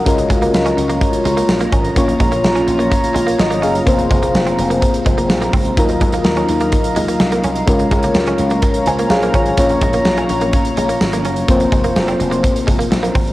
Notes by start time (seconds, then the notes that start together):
Already playing: F#4 D#5
0.05 C#2 G#3 C#4 F4 A#4 C#5 A#5, kick, closed hi-hat
0.18 muted clean electric guitar stroke, closed hi-hat
0.30 C#2 G#3, kick, closed hi-hat
0.42 A#3, closed hi-hat
0.53 C#2, snare, tambourine
0.66 C#4, closed hi-hat
0.77 C#2, muted clean electric guitar stroke, closed hi-hat
0.90 A#3, closed hi-hat
1.01 muted clean electric guitar stroke, kick, closed hi-hat
1.13 closed hi-hat
1.25 C#2 G#3, closed hi-hat
1.37 A#3, closed hi-hat
1.49 A#1, muted clean electric guitar stroke, snare, tambourine
1.61 A#3, closed hi-hat
1.73 G#1 C#4, kick, closed hi-hat
1.85 closed hi-hat
1.96 A#1 A#3 C#4 F4 C#5, kick, closed hi-hat
2.08 muted clean electric guitar stroke, closed hi-hat
2.20 A#1 G#3, kick, closed hi-hat
2.32 A#3, closed hi-hat
2.44 A#1, snare, tambourine
2.55 C#4, closed hi-hat
2.67 A#1, muted clean electric guitar stroke, closed hi-hat
2.79 A#3, closed hi-hat
2.91 muted clean electric guitar stroke, kick, closed hi-hat
3.04 closed hi-hat
3.15 A#1 G#3, closed hi-hat
3.27 A#3, closed hi-hat
3.39 G#1 D#5, muted clean electric guitar stroke, snare, tambourine
3.51 A#3, closed hi-hat
3.62 F#1 C#4 G#4 F5, closed hi-hat
3.75 closed hi-hat
3.86 F1 A#3 C4 F4 C5 F5, kick, closed hi-hat
3.98 muted clean electric guitar stroke, closed hi-hat
4.11 F1 G#3, kick, closed hi-hat
4.23 A#3, closed hi-hat
4.34 F1, snare, tambourine
4.47 C4, closed hi-hat
4.59 F1, muted clean electric guitar stroke, closed hi-hat
4.70 A#3, closed hi-hat
4.82 muted clean electric guitar stroke, kick, closed hi-hat
4.94 closed hi-hat
5.06 F1 G#3, kick, closed hi-hat
5.18 A#3, closed hi-hat
5.30 A#1, muted clean electric guitar stroke, snare, tambourine
5.42 A#3, closed hi-hat
5.53 C#2 C4, kick, open hi-hat
5.65 closed hi-hat
5.77 D#2 F#3 D#4 F4 A#4 D#5 A#5, kick, closed hi-hat
5.89 muted clean electric guitar stroke, closed hi-hat
6.01 D#2 G#3, kick, closed hi-hat
6.12 A#3, closed hi-hat
6.24 D#2, snare, tambourine
6.36 C#4, closed hi-hat
6.49 D#2, muted clean electric guitar stroke, closed hi-hat
6.60 A#3, closed hi-hat
6.72 muted clean electric guitar stroke, kick, closed hi-hat
6.84 closed hi-hat
6.96 D#2 G#3, closed hi-hat
7.08 A#3, closed hi-hat
7.20 C2, muted clean electric guitar stroke, snare, tambourine
7.32 A#3, closed hi-hat
7.44 C2 C#4, closed hi-hat
7.55 closed hi-hat
7.66 C#2 G#3 C#4 F4 A#4 C#5, kick, closed hi-hat
7.79 muted clean electric guitar stroke, closed hi-hat
7.91 C#2 G#3, kick, closed hi-hat
8.03 A#3, closed hi-hat
8.14 C#2, snare, tambourine
8.27 C#4, closed hi-hat
8.38 C#2, muted clean electric guitar stroke, closed hi-hat
8.50 A#3, closed hi-hat
8.62 muted clean electric guitar stroke, kick, closed hi-hat
8.74 closed hi-hat
8.86 C#2 G#3 C5 G#5, closed hi-hat
8.99 A#3, closed hi-hat
9.10 A#1 G#4 F5, muted clean electric guitar stroke, snare, tambourine
9.23 A#3, closed hi-hat
9.34 G#1 C#4 F4 C#5, kick, closed hi-hat
9.46 closed hi-hat
9.57 A#1 A#3 C#4 F4 C#5, kick, closed hi-hat
9.69 muted clean electric guitar stroke, closed hi-hat
9.81 A#1 G#3, kick, closed hi-hat
9.93 A#3, closed hi-hat
10.05 A#1, snare, tambourine
10.17 C#4, closed hi-hat
10.29 A#1, muted clean electric guitar stroke, closed hi-hat
10.41 A#3, closed hi-hat
10.53 muted clean electric guitar stroke, kick, closed hi-hat
10.65 closed hi-hat
10.77 A#1 G#3, closed hi-hat
10.89 A#3, closed hi-hat
11.01 G#1, muted clean electric guitar stroke, snare, tambourine
11.13 A#3, closed hi-hat
11.25 F#1 C#4, closed hi-hat
11.36 closed hi-hat
11.48 F1 A#3 C4 F4 C5, kick, closed hi-hat
11.60 muted clean electric guitar stroke, closed hi-hat
11.72 F1 G#3, kick, closed hi-hat
11.84 A#3, closed hi-hat
11.96 F1, snare, tambourine
12.08 C4, closed hi-hat
12.20 F1, muted clean electric guitar stroke, closed hi-hat
12.31 A#3, closed hi-hat
12.43 muted clean electric guitar stroke, kick, closed hi-hat
12.56 closed hi-hat
12.67 F1 G#3, kick, closed hi-hat
12.79 A#3, closed hi-hat
12.91 A#1, muted clean electric guitar stroke, snare, tambourine
13.03 A#3, closed hi-hat
13.15 G#1 C4, kick, open hi-hat
13.27 closed hi-hat